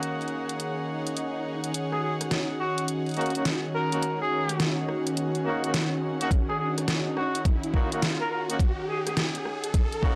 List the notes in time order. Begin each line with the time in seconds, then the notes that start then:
Already playing: D#3 A#3 C#4 D#4 F#4 G#4 C#5 F#5
0.03 closed hi-hat
0.21 closed hi-hat
0.28 closed hi-hat
0.49 closed hi-hat
0.60 closed hi-hat, swell
1.07 closed hi-hat
1.17 closed hi-hat
1.64 closed hi-hat
1.74 D#3 C#4 F#4, closed hi-hat, riser
1.92 G#4, cross-stick
2.03 G#4
2.21 cross-stick, closed hi-hat
2.31 snare, closed hi-hat
2.60 F#4
2.78 closed hi-hat
2.88 closed hi-hat
3.06 closed hi-hat
3.09 closed hi-hat
3.11 closed hi-hat
3.14 closed hi-hat
3.17 A#3 C#4 D#4 F#4, closed hi-hat
3.21 closed hi-hat
3.26 closed hi-hat
3.30 closed hi-hat
3.35 A#3 C#4 D#4 F#4, closed hi-hat
3.45 snare, closed hi-hat
3.75 A#4
3.92 A#3 C#4 D#4 F#4, closed hi-hat
4.02 closed hi-hat
4.21 G#4
4.49 cross-stick, closed hi-hat
4.60 snare, closed hi-hat
4.88 cross-stick
5.07 closed hi-hat
5.17 closed hi-hat
5.35 closed hi-hat
5.45 A#3 C#4 D#4 F#4
5.64 A#3 C#4 D#4 F#4, closed hi-hat
5.74 snare, closed hi-hat
6.20 A#3 C#4 D#4 F#4, closed hi-hat
6.31 kick, closed hi-hat
6.49 G#4, cross-stick
6.59 G#4
6.78 cross-stick, closed hi-hat
6.88 snare, closed hi-hat
7.16 F#4, cross-stick
7.35 closed hi-hat
7.45 kick, closed hi-hat
7.63 closed hi-hat
7.74 A#3 C#4 D#4 F#4, kick
7.92 A#3 C#4 D#4 F#4, closed hi-hat
8.02 snare, closed hi-hat
8.21 A#4
8.31 A#4
8.49 A#3 C#4 D#4 F#4, closed hi-hat
8.60 kick, closed hi-hat
8.88 G#4
9.06 G#4, cross-stick, closed hi-hat
9.17 snare, closed hi-hat
9.35 closed hi-hat
9.45 cross-stick
9.64 closed hi-hat
9.74 kick, closed hi-hat
9.92 closed hi-hat
10.03 A#3 C#4 D#4 F#4, kick